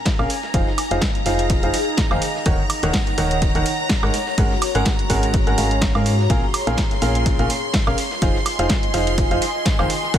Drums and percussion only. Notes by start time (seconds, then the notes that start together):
0.06 kick, snare, closed hi-hat, ride
0.19 snare, high woodblock
0.30 open hi-hat, ride
0.43 snare
0.54 kick, closed hi-hat, ride
0.67 snare
0.78 snare, open hi-hat, high woodblock
0.91 closed hi-hat, ride
1.02 kick, snare, closed hi-hat, ride
1.15 closed hi-hat
1.26 snare, open hi-hat, ride
1.39 closed hi-hat, ride
1.50 kick, closed hi-hat, ride
1.63 closed hi-hat
1.74 snare, open hi-hat, ride
1.97 kick, snare, closed hi-hat, ride
2.11 snare, high woodblock
2.22 open hi-hat, ride
2.35 snare
2.46 kick, closed hi-hat, ride
2.70 open hi-hat, ride, high woodblock
2.83 snare, closed hi-hat
2.93 kick, snare, closed hi-hat, ride
3.07 snare, closed hi-hat
3.18 open hi-hat, ride
3.31 closed hi-hat
3.42 kick, closed hi-hat, ride
3.55 closed hi-hat
3.66 open hi-hat, ride
3.89 kick, snare, closed hi-hat, ride
4.03 snare, high woodblock
4.14 open hi-hat, ride
4.27 snare
4.38 kick, closed hi-hat, ride
4.51 snare
4.62 snare, open hi-hat, high woodblock
4.75 closed hi-hat, ride
4.85 kick, snare, closed hi-hat, ride
4.99 closed hi-hat
5.10 kick, snare, open hi-hat, ride
5.23 closed hi-hat, ride
5.34 kick, closed hi-hat, ride
5.47 closed hi-hat
5.58 snare, open hi-hat, ride
5.71 closed hi-hat
5.82 kick, snare, closed hi-hat, ride
5.95 snare, high woodblock
6.06 open hi-hat, ride
6.19 snare
6.30 kick, closed hi-hat, ride
6.54 open hi-hat, ride, high woodblock
6.67 snare, closed hi-hat
6.78 kick, snare, closed hi-hat, ride
6.91 snare, closed hi-hat
7.02 open hi-hat, ride
7.15 closed hi-hat
7.26 kick, closed hi-hat, ride
7.39 closed hi-hat
7.50 open hi-hat, ride
7.74 kick, snare, closed hi-hat, ride
7.87 snare, high woodblock
7.98 open hi-hat, ride
8.11 snare
8.22 kick, closed hi-hat, ride
8.35 snare
8.46 snare, open hi-hat, high woodblock
8.59 closed hi-hat, ride
8.69 kick, snare, closed hi-hat, ride
8.83 closed hi-hat
8.94 snare, open hi-hat, ride
9.07 closed hi-hat, ride
9.18 kick, closed hi-hat, ride
9.31 closed hi-hat
9.42 snare, open hi-hat, ride
9.66 kick, snare, closed hi-hat, ride
9.79 snare, high woodblock
9.90 open hi-hat, ride
10.03 snare
10.14 kick, closed hi-hat, ride